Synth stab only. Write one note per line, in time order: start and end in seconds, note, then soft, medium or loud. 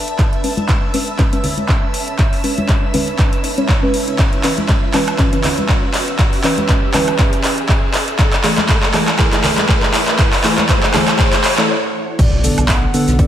0.44 0.91 G#3 medium
0.44 0.91 C#4 medium
0.44 0.91 B4 medium
0.94 1.16 G#3 medium
0.94 1.16 C#4 medium
0.94 1.16 B4 loud
1.19 1.31 G#3 medium
1.19 1.31 C#4 medium
1.19 1.31 B4 loud
1.33 2.41 G#3 medium
1.33 2.41 C#4 medium
1.33 2.41 B4 loud
2.44 2.91 G#3 medium
2.44 2.91 C#4 medium
2.44 2.91 B4 medium
2.94 3.55 G#3 medium
2.94 3.55 C#4 medium
2.94 3.55 B4 loud
3.58 3.79 G#3 medium
3.58 3.79 C#4 medium
3.58 3.79 C#5 medium
3.83 4.18 G#3 medium
3.83 4.18 C#4 medium
3.83 4.18 B4 loud
4.44 4.91 E3 medium
4.44 4.91 C#4 medium
4.44 4.91 B4 medium
4.94 5.16 E3 medium
4.94 5.16 C#4 medium
4.94 5.16 B4 loud
5.19 5.31 E3 loud
5.19 5.31 C#4 medium
5.19 5.31 B4 loud
5.33 6.41 E3 medium
5.33 6.41 C#4 medium
5.33 6.41 B4 loud
6.44 6.91 E3 medium
6.44 6.91 C#4 medium
6.44 6.91 B4 medium
6.94 7.92 E3 medium
6.94 7.93 C#4 medium
6.94 7.93 B4 loud
8.44 8.91 E3 medium
8.44 8.91 A3 medium
8.44 8.91 G#4 medium
8.94 9.16 E3 loud
8.94 9.16 A3 medium
8.94 9.16 G#4 loud
9.19 9.31 E3 loud
9.19 9.31 A3 medium
9.19 9.31 G#4 loud
9.33 10.41 E3 medium
9.33 10.41 A3 medium
9.33 10.41 G#4 loud
10.44 10.91 E3 medium
10.44 10.91 A3 medium
10.44 10.91 G#4 medium
10.94 11.55 E3 medium
10.94 11.55 A3 medium
10.94 11.55 G#4 loud
11.58 11.69 E3 medium
11.58 11.69 A3 medium
11.58 11.69 A4 medium
12.44 12.91 D3 medium
12.44 12.91 B3 medium
12.44 12.91 A4 medium
12.94 13.16 D3 loud
12.94 13.16 B3 medium
12.94 13.16 A4 loud
13.19 13.27 D3 medium
13.19 13.27 B3 medium
13.19 13.27 A4 loud